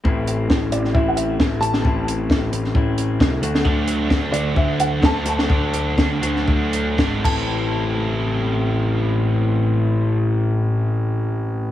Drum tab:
CC |----------------|----------------|----------------|--------------x-|
HH |--x---x---x---x-|--x---x---x---x-|--x---x---x---x-|--x---x---x-----|
SD |----o--o----o--o|----o--o----o--o|----o-------o--o|----o--o----o---|
BD |o---o---o---o---|o---o---o---o---|o---o---o---o---|o---o---o---o-o-|

CC |----------------|----------------|
HH |----------------|----------------|
SD |----------------|----------------|
BD |----------------|----------------|